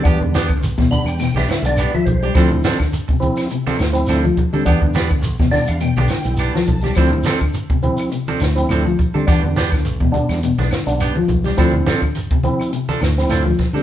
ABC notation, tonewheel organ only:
X:1
M:4/4
L:1/16
Q:"Swing 16ths" 1/4=104
K:Ddor
V:1 name="Tonewheel organ"
z6 b g g e2 d d e c2 | z16 | z6 d f g4 a4 | z16 |
z16 | z16 |]
V:2 name="Tonewheel organ"
[G,B,D]2 z4 [G,B,D]2 z3 [G,B,D]2 z3 | [F,CE]2 z4 [F,CE]2 z3 [F,CE]2 z3 | [G,B,D]2 z4 [G,B,D]2 z3 [G,B,E]2 z3 | [F,CE]2 z4 [F,CE]2 z3 [F,CE]2 z3 |
[G,B,D]2 z4 [G,B,D]2 z3 [G,B,D]2 z3 | [F,CE]2 z4 [F,CE]2 z3 [F,CE]2 z3 |]